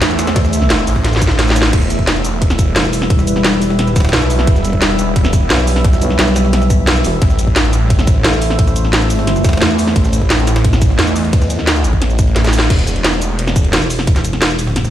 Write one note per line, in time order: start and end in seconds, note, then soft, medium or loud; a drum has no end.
0.00 0.86 E2 loud
0.00 1.69 A3 medium
0.00 1.69 E4 medium
0.00 1.69 C5 medium
0.00 1.69 E5 medium
0.00 snare loud
0.00 closed hi-hat medium
0.00 closed hi-hat loud
0.10 snare soft
0.10 shaker soft
0.19 snare loud
0.19 closed hi-hat medium
0.19 shaker medium
0.27 snare loud
0.27 snare soft
0.27 closed hi-hat medium
0.36 kick loud
0.36 snare loud
0.36 closed hi-hat medium
0.44 snare medium
0.44 shaker soft
0.53 closed hi-hat medium
0.53 shaker medium
0.62 snare soft
0.70 snare loud
0.70 closed hi-hat loud
0.70 closed hi-hat medium
0.79 shaker soft
0.87 1.72 A1 medium
0.87 closed hi-hat medium
0.87 open hi-hat medium
0.87 shaker medium
0.96 kick medium
0.96 snare medium
1.05 snare medium
1.05 closed hi-hat medium
1.05 closed hi-hat loud
1.13 snare soft
1.13 shaker soft
1.16 snare medium
1.22 kick loud
1.22 closed hi-hat medium
1.22 shaker medium
1.27 snare medium
1.39 snare loud
1.39 closed hi-hat medium
1.39 closed hi-hat loud
1.47 snare loud
1.47 closed hi-hat soft
1.47 shaker soft
1.56 snare loud
1.56 closed hi-hat medium
1.56 shaker medium
1.62 snare loud
1.73 2.23 E1 medium
1.73 7.18 G3 medium
1.73 7.18 E4 medium
1.73 7.18 B4 medium
1.73 9.92 E5 medium
1.73 kick loud
1.73 closed hi-hat medium
1.73 crash medium
1.82 snare soft
1.82 shaker soft
1.90 closed hi-hat medium
1.90 shaker medium
1.99 kick medium
2.07 snare loud
2.07 closed hi-hat medium
2.07 closed hi-hat loud
2.16 shaker soft
2.25 2.75 E1 loud
2.25 closed hi-hat medium
2.25 shaker medium
2.42 kick loud
2.42 closed hi-hat medium
2.50 snare medium
2.50 closed hi-hat soft
2.50 shaker soft
2.59 kick loud
2.59 closed hi-hat medium
2.59 shaker medium
2.76 3.71 E1 medium
2.76 snare loud
2.76 closed hi-hat medium
2.85 snare soft
2.85 shaker soft
2.93 closed hi-hat medium
2.93 open hi-hat medium
2.93 shaker medium
3.02 snare medium
3.10 kick loud
3.10 closed hi-hat medium
3.19 snare medium
3.19 shaker soft
3.27 closed hi-hat medium
3.27 shaker medium
3.36 snare soft
3.44 snare loud
3.44 closed hi-hat loud
3.44 closed hi-hat medium
3.53 shaker soft
3.62 closed hi-hat medium
3.62 open hi-hat medium
3.62 shaker medium
3.70 3.99 D#1 medium
3.70 snare medium
3.79 snare medium
3.79 closed hi-hat medium
3.87 snare soft
3.87 shaker soft
3.96 4.12 D1 medium
3.96 kick loud
3.96 snare medium
3.96 closed hi-hat medium
3.96 shaker medium
4.00 snare loud
4.00 closed hi-hat medium
4.05 snare loud
4.05 closed hi-hat medium
4.09 snare loud
4.09 closed hi-hat medium
4.13 4.46 B1 loud
4.13 snare loud
4.13 closed hi-hat medium
4.22 closed hi-hat soft
4.22 shaker soft
4.30 closed hi-hat medium
4.30 open hi-hat medium
4.30 shaker medium
4.39 snare medium
4.47 4.97 E1 medium
4.47 kick loud
4.47 closed hi-hat medium
4.56 snare soft
4.56 shaker soft
4.65 closed hi-hat medium
4.65 shaker medium
4.73 kick medium
4.82 snare loud
4.82 closed hi-hat medium
4.90 shaker soft
4.99 5.49 E1 medium
4.99 closed hi-hat medium
4.99 shaker medium
5.16 kick loud
5.16 closed hi-hat medium
5.24 snare medium
5.24 closed hi-hat soft
5.24 shaker soft
5.33 kick loud
5.33 closed hi-hat medium
5.33 shaker medium
5.50 5.83 B1 loud
5.50 snare loud
5.50 closed hi-hat medium
5.59 snare soft
5.59 shaker soft
5.67 closed hi-hat medium
5.67 open hi-hat medium
5.67 shaker medium
5.76 snare soft
5.84 6.00 B1 medium
5.84 kick loud
5.84 closed hi-hat medium
5.93 snare medium
5.93 shaker soft
6.02 6.17 B1 medium
6.02 closed hi-hat medium
6.02 shaker medium
6.10 snare soft
6.19 7.03 B1 loud
6.19 snare loud
6.19 closed hi-hat medium
6.19 closed hi-hat loud
6.27 shaker soft
6.36 snare loud
6.36 closed hi-hat medium
6.36 shaker medium
6.45 snare medium
6.53 snare loud
6.53 snare soft
6.53 closed hi-hat medium
6.62 snare medium
6.62 shaker soft
6.70 kick loud
6.70 closed hi-hat medium
6.70 shaker medium
6.87 snare loud
6.87 closed hi-hat medium
6.96 closed hi-hat soft
6.96 shaker soft
7.04 7.20 E1 loud
7.04 closed hi-hat medium
7.04 open hi-hat medium
7.04 shaker medium
7.22 7.72 A1 loud
7.22 12.66 A3 medium
7.22 12.66 E4 medium
7.22 12.66 C5 medium
7.22 kick loud
7.22 closed hi-hat medium
7.30 snare soft
7.30 shaker soft
7.39 closed hi-hat medium
7.39 shaker medium
7.47 kick medium
7.56 snare loud
7.56 closed hi-hat medium
7.65 shaker soft
7.73 8.23 A1 loud
7.73 closed hi-hat medium
7.73 shaker medium
7.90 kick loud
7.90 closed hi-hat medium
7.90 closed hi-hat loud
7.99 snare medium
7.99 closed hi-hat soft
7.99 shaker soft
8.07 kick loud
8.07 closed hi-hat medium
8.07 shaker medium
8.24 9.23 A1 loud
8.24 snare loud
8.24 closed hi-hat medium
8.33 snare soft
8.33 shaker soft
8.42 closed hi-hat medium
8.42 open hi-hat medium
8.42 shaker medium
8.50 snare soft
8.59 kick loud
8.59 closed hi-hat medium
8.67 snare medium
8.67 shaker soft
8.76 closed hi-hat medium
8.76 shaker medium
8.84 snare soft
8.93 snare loud
8.93 closed hi-hat medium
9.02 shaker soft
9.10 closed hi-hat medium
9.10 open hi-hat medium
9.10 shaker medium
9.19 9.45 G1 loud
9.19 snare medium
9.27 snare soft
9.27 closed hi-hat medium
9.36 snare soft
9.36 shaker soft
9.44 9.60 F1 loud
9.44 kick loud
9.44 snare medium
9.44 closed hi-hat medium
9.44 shaker medium
9.49 snare medium
9.49 closed hi-hat medium
9.53 snare medium
9.53 closed hi-hat medium
9.57 snare medium
9.57 closed hi-hat medium
9.62 9.95 E2 loud
9.62 snare loud
9.62 closed hi-hat medium
9.70 closed hi-hat soft
9.70 shaker soft
9.79 closed hi-hat medium
9.79 open hi-hat medium
9.79 shaker medium
9.87 snare soft
9.96 10.46 A1 medium
9.96 12.67 D#5 medium
9.96 kick loud
9.96 closed hi-hat medium
10.04 snare soft
10.04 shaker soft
10.13 closed hi-hat medium
10.13 shaker medium
10.22 kick medium
10.30 snare loud
10.30 closed hi-hat loud
10.30 closed hi-hat medium
10.39 shaker soft
10.47 10.97 A1 medium
10.47 snare loud
10.47 closed hi-hat medium
10.47 shaker medium
10.56 snare loud
10.56 closed hi-hat medium
10.64 kick loud
10.64 closed hi-hat loud
10.64 closed hi-hat medium
10.73 snare medium
10.73 closed hi-hat soft
10.73 shaker soft
10.82 kick loud
10.82 closed hi-hat medium
10.82 shaker medium
10.90 snare soft
10.99 11.59 E2 loud
10.99 snare loud
10.99 closed hi-hat loud
10.99 closed hi-hat medium
11.07 closed hi-hat medium
11.07 shaker soft
11.16 snare soft
11.16 open hi-hat medium
11.16 shaker medium
11.25 closed hi-hat medium
11.33 kick loud
11.33 closed hi-hat loud
11.33 closed hi-hat medium
11.42 snare medium
11.42 shaker soft
11.50 closed hi-hat medium
11.50 shaker medium
11.59 11.83 D#2 loud
11.59 snare soft
11.67 snare loud
11.67 closed hi-hat loud
11.67 closed hi-hat medium
11.76 shaker soft
11.84 12.69 A1 loud
11.84 closed hi-hat medium
11.84 shaker medium
11.93 kick medium
12.02 snare soft
12.02 closed hi-hat loud
12.02 closed hi-hat medium
12.10 shaker soft
12.19 kick loud
12.19 closed hi-hat medium
12.19 shaker medium
12.27 closed hi-hat soft
12.36 snare medium
12.36 snare loud
12.36 closed hi-hat medium
12.44 snare loud
12.44 closed hi-hat medium
12.44 shaker soft
12.47 snare medium
12.53 closed hi-hat medium
12.53 open hi-hat medium
12.53 shaker medium
12.59 snare loud
12.70 13.20 E1 medium
12.70 kick loud
12.70 closed hi-hat medium
12.70 closed hi-hat loud
12.70 crash loud
12.79 snare soft
12.79 closed hi-hat soft
12.79 shaker soft
12.87 closed hi-hat medium
12.87 shaker medium
12.96 closed hi-hat soft
13.04 snare loud
13.04 closed hi-hat loud
13.04 closed hi-hat medium
13.13 shaker soft
13.22 13.72 E1 medium
13.22 closed hi-hat medium
13.22 shaker medium
13.39 closed hi-hat medium
13.47 snare medium
13.47 closed hi-hat soft
13.47 shaker soft
13.56 kick loud
13.56 closed hi-hat medium
13.56 shaker medium
13.65 closed hi-hat soft
13.73 14.90 E1 medium
13.73 snare loud
13.73 closed hi-hat medium
13.73 closed hi-hat loud
13.82 snare soft
13.82 shaker soft
13.90 closed hi-hat medium
13.90 open hi-hat medium
13.90 shaker medium
13.99 snare soft
14.07 kick loud
14.07 closed hi-hat medium
14.16 snare medium
14.16 snare soft
14.16 closed hi-hat soft
14.16 shaker soft
14.25 closed hi-hat medium
14.25 shaker medium
14.33 snare soft
14.33 closed hi-hat soft
14.42 snare loud
14.42 closed hi-hat medium
14.42 closed hi-hat loud
14.50 shaker soft
14.59 closed hi-hat medium
14.59 open hi-hat medium
14.59 shaker medium
14.67 snare medium
14.76 snare soft
14.76 closed hi-hat medium
14.85 snare medium
14.85 shaker soft